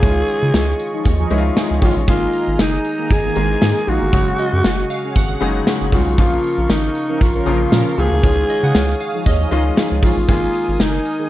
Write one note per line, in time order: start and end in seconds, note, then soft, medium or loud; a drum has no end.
0.00 0.22 C#2 loud
0.00 0.92 D#3 medium
0.00 0.92 G#3 medium
0.00 0.92 C#4 medium
0.00 0.10 E4 medium
0.00 2.04 F4 medium
0.00 1.32 G#4 loud
0.00 4.09 D#5 medium
0.00 2.06 C#6 medium
0.00 kick loud
0.00 closed hi-hat medium
0.00 tambourine soft
0.09 0.96 F4 medium
0.28 closed hi-hat medium
0.28 tambourine soft
0.43 0.51 C#3 medium
0.54 0.73 C#2 loud
0.54 snare loud
0.54 closed hi-hat loud
0.54 tambourine medium
0.79 closed hi-hat medium
0.79 tambourine medium
0.94 1.04 F3 medium
0.94 1.04 D#4 medium
0.94 1.04 G#4 medium
1.05 1.25 D#2 medium
1.05 kick medium
1.05 closed hi-hat medium
1.05 tambourine medium
1.20 1.29 F3 medium
1.20 1.29 D#4 medium
1.20 1.29 G#4 medium
1.30 1.50 C#2 loud
1.30 1.75 D#3 medium
1.30 1.43 F3 loud
1.30 1.76 G#3 medium
1.30 1.76 C#4 medium
1.30 1.43 D#4 loud
1.30 1.38 E4 medium
1.30 1.43 G#4 loud
1.30 closed hi-hat medium
1.30 tambourine soft
1.38 1.79 F4 loud
1.57 1.94 F3 medium
1.57 1.94 D#4 medium
1.57 1.94 G#4 loud
1.57 snare loud
1.57 closed hi-hat medium
1.57 tambourine medium
1.71 1.79 C#2 medium
1.82 1.93 A#1 medium
1.82 2.04 D#3 medium
1.82 2.05 G#3 medium
1.82 2.05 C#4 medium
1.82 1.95 F4 medium
1.82 2.05 G#4 medium
1.82 kick medium
1.82 open hi-hat medium
1.96 2.05 A1 medium
2.07 2.27 G#1 loud
2.07 2.97 D#3 medium
2.07 2.97 G#3 medium
2.07 2.98 A#3 medium
2.07 2.62 F4 loud
2.07 4.11 G#4 medium
2.07 2.98 G#4 medium
2.07 4.11 A#5 medium
2.07 kick loud
2.07 closed hi-hat medium
2.33 closed hi-hat medium
2.33 tambourine soft
2.48 2.56 G#1 medium
2.59 2.78 F#1 medium
2.59 3.14 D#4 medium
2.59 snare loud
2.59 closed hi-hat loud
2.59 tambourine medium
2.84 closed hi-hat medium
2.84 tambourine medium
2.99 3.09 D#3 medium
2.99 3.09 A#3 medium
2.99 3.09 G#4 medium
3.10 3.30 G#1 medium
3.10 3.90 G#4 loud
3.10 kick medium
3.10 closed hi-hat medium
3.10 tambourine medium
3.25 3.35 D#3 medium
3.25 3.35 A#3 medium
3.25 3.34 G#4 medium
3.36 3.56 G#1 loud
3.36 3.81 D#3 medium
3.36 3.48 D#3 loud
3.36 3.81 G#3 medium
3.36 3.48 A#3 loud
3.36 3.81 A#3 medium
3.36 3.48 G#4 loud
3.36 3.81 G#4 medium
3.36 closed hi-hat medium
3.36 tambourine soft
3.62 3.73 G#2 loud
3.62 4.00 D#3 medium
3.62 4.00 A#3 loud
3.62 4.00 G#4 loud
3.62 snare loud
3.62 closed hi-hat medium
3.62 tambourine medium
3.87 3.98 A#1 loud
3.87 4.10 D#3 medium
3.87 4.10 G#3 medium
3.87 4.10 A#3 medium
3.87 4.10 F4 medium
3.87 5.42 F#4 loud
3.87 open hi-hat medium
3.87 tambourine soft
4.02 4.10 G1 medium
4.12 4.32 F#1 loud
4.12 5.02 C#3 medium
4.12 5.02 F#3 medium
4.12 5.03 G#3 medium
4.12 5.03 F#4 medium
4.12 6.16 G#4 medium
4.12 6.16 F#5 medium
4.12 8.19 C#6 medium
4.12 kick loud
4.12 closed hi-hat medium
4.12 tambourine soft
4.38 4.91 D#5 medium
4.38 closed hi-hat medium
4.38 tambourine soft
4.53 4.62 F#2 medium
4.64 4.84 F#1 loud
4.64 snare loud
4.64 closed hi-hat medium
4.64 tambourine medium
4.90 5.16 F5 medium
4.90 closed hi-hat medium
4.90 tambourine medium
5.04 5.14 C#4 medium
5.04 5.14 G#4 medium
5.15 5.35 G#1 loud
5.15 5.40 F#5 loud
5.15 kick medium
5.15 closed hi-hat medium
5.15 tambourine medium
5.30 5.40 C#4 medium
5.30 5.40 G#4 medium
5.41 5.61 F#1 medium
5.41 5.86 C#3 medium
5.41 5.86 F#3 medium
5.41 5.86 G#3 medium
5.41 5.53 C#4 loud
5.41 5.86 D#4 medium
5.41 5.53 G#4 loud
5.41 5.78 F#5 medium
5.41 closed hi-hat medium
5.41 tambourine soft
5.67 6.05 C#4 loud
5.67 6.05 G#4 loud
5.67 snare loud
5.67 closed hi-hat medium
5.67 tambourine medium
5.81 5.90 F#1 medium
5.92 6.03 C2 loud
5.92 6.15 C#3 medium
5.92 6.15 F#3 medium
5.92 6.15 G#3 medium
5.92 6.17 F4 medium
5.92 6.15 F#4 medium
5.92 kick medium
5.92 open hi-hat medium
6.07 6.15 B1 medium
6.18 6.37 A#1 loud
6.18 7.07 C#3 medium
6.18 7.08 F3 medium
6.18 7.08 A#3 medium
6.18 7.08 F4 medium
6.18 6.72 F4 medium
6.18 8.21 A#4 medium
6.18 10.24 F5 medium
6.18 kick loud
6.18 closed hi-hat medium
6.44 closed hi-hat medium
6.44 tambourine soft
6.58 6.67 A#1 medium
6.70 6.89 G#1 medium
6.70 7.24 D#4 medium
6.70 snare loud
6.70 closed hi-hat loud
6.70 tambourine medium
6.95 closed hi-hat medium
6.95 tambourine medium
7.09 7.19 F3 medium
7.09 7.19 C#4 medium
7.09 7.19 A#4 medium
7.21 7.40 A#1 medium
7.21 8.00 F4 medium
7.21 kick medium
7.21 closed hi-hat medium
7.21 tambourine medium
7.35 7.45 F3 medium
7.35 7.45 C#4 medium
7.35 7.45 A#4 medium
7.46 7.66 A#1 medium
7.46 7.91 C#3 medium
7.46 7.91 F3 medium
7.46 7.58 F3 loud
7.46 7.91 A#3 medium
7.46 7.58 C#4 loud
7.46 7.92 F4 medium
7.46 7.58 A#4 loud
7.46 closed hi-hat medium
7.46 tambourine soft
7.72 7.83 A#2 loud
7.72 8.10 F3 loud
7.72 8.10 C#4 loud
7.72 8.10 A#4 loud
7.72 snare loud
7.72 closed hi-hat medium
7.72 tambourine medium
7.97 8.08 C#2 loud
7.97 8.20 C#3 medium
7.97 8.20 F3 medium
7.97 8.20 A#3 medium
7.97 8.20 F4 medium
7.97 9.52 G#4 loud
7.97 open hi-hat medium
8.12 8.21 D2 medium
8.23 8.43 C#2 loud
8.23 9.12 D#3 medium
8.23 9.13 G#3 medium
8.23 9.13 C#4 medium
8.23 9.13 F4 medium
8.23 10.26 C#5 medium
8.23 10.26 D#6 medium
8.23 kick loud
8.23 closed hi-hat medium
8.23 tambourine soft
8.49 8.64 D#5 medium
8.49 closed hi-hat medium
8.49 tambourine soft
8.63 8.72 C#3 loud
8.63 8.75 F#5 loud
8.75 8.94 C#2 loud
8.75 8.99 F5 medium
8.75 snare loud
8.75 closed hi-hat loud
8.75 tambourine medium
9.00 9.27 F5 loud
9.00 closed hi-hat medium
9.00 tambourine medium
9.14 9.24 F3 medium
9.14 9.24 D#4 medium
9.14 9.24 G#4 medium
9.26 9.45 D#2 medium
9.26 9.38 D#5 medium
9.26 kick medium
9.26 closed hi-hat medium
9.26 tambourine medium
9.40 9.50 F3 medium
9.40 9.50 D#4 medium
9.40 9.50 G#4 medium
9.51 9.71 C#2 medium
9.51 9.96 D#3 medium
9.51 9.64 F3 loud
9.51 9.96 G#3 medium
9.51 9.96 C#4 medium
9.51 9.64 D#4 loud
9.51 9.97 F4 loud
9.51 9.64 G#4 loud
9.51 9.89 D#5 medium
9.51 closed hi-hat medium
9.51 tambourine soft
9.77 10.15 F3 loud
9.77 10.15 D#4 loud
9.77 10.15 G#4 loud
9.77 snare loud
9.77 closed hi-hat medium
9.77 tambourine medium
9.91 10.00 C#2 medium
10.02 10.13 A#1 medium
10.02 10.25 D#3 medium
10.02 10.25 G#3 medium
10.02 10.25 C#4 medium
10.02 10.26 F4 medium
10.02 10.28 F4 medium
10.02 kick medium
10.02 open hi-hat medium
10.02 tambourine soft
10.17 10.26 A1 medium
10.28 10.48 G#1 loud
10.28 11.18 D#3 medium
10.28 11.18 G#3 medium
10.28 11.18 A#3 medium
10.28 10.83 F4 loud
10.28 11.18 G#4 medium
10.28 11.29 A#4 medium
10.28 11.29 G#5 medium
10.28 11.29 D#6 medium
10.28 kick loud
10.28 closed hi-hat medium
10.28 tambourine soft
10.54 closed hi-hat medium
10.54 tambourine soft
10.69 10.77 G#1 medium
10.80 10.99 F#1 loud
10.80 11.29 D#4 medium
10.80 snare loud
10.80 closed hi-hat loud
10.80 tambourine medium
11.05 closed hi-hat medium
11.05 tambourine medium
11.20 11.29 D#3 medium
11.20 11.29 A#3 medium
11.20 11.29 G#4 medium